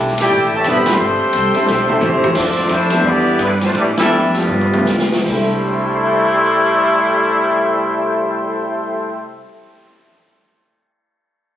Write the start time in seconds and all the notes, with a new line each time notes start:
Already playing: B1 G3 A3 D4 E4 G4 A4 E5
0.08 snare
0.18 A3 E4 G4 A4 D5 G5, snare, ride
0.31 A1, kick
0.52 A2 E3 A3 G4 D5, kick
0.56 E5 A5
0.64 E1 G3 B3 C4 D4 E4 A4, kick, hi-hat pedal, ride
0.69 G4 C5 E5 B5
0.86 G3 A3 C4 E5 G5, snare, ride
0.90 A4 C6
0.99 G1
1.20 muted upright bass stroke
1.33 C2, kick, hi-hat pedal, ride
1.54 G3 C4 D4 E4 A4, ride
1.67 B1, snare
1.88 G3 C4 D4 E4 A4, mid tom
2.01 A1 G3 A3 C4 E4 G4 C5, floor tom, hi-hat pedal
2.24 floor tom
2.34 D2 F3 A3 C4 D4 E4 F4 A4 D5, kick, crash
2.56 snare
2.69 F2 A3 C4 D4 E4 A4 C5 E5, kick, hi-hat pedal, ride
2.90 G3 B3 D4 E4 A4, snare, ride
3.03 E2 G3 B3 D4 E4 G4 D5, kick
3.39 G2 D3 G3 B3 D4 E4 B4, kick, hi-hat pedal, ride
3.61 A3 C4 D4 F4 C5, snare, ride
3.74 A2 E3 G3 A3 D4 E4 G4 D5, kick, ride
3.97 E3 G3 A3 B3 D4 E4 G4 A4 E5, snare, ride
4.11 F2, hi-hat pedal
4.34 D3 F3 G3 B3 D4 F4 B4, snare, ride
4.48 G2, mid tom
4.61 mid tom
4.73 A3 B3 D4 F4 G4, mid tom
4.86 D2, snare, hi-hat pedal
4.99 snare
5.12 snare
5.22 C2 C3 C4 E4
5.26 C3 G3 A3 D4 A4 E5 G5 C6, kick, crash
5.31 E4 A4
5.68 C5
5.75 E5
5.84 A5
5.93 C6
6.03 E6
6.14 A6
6.25 C7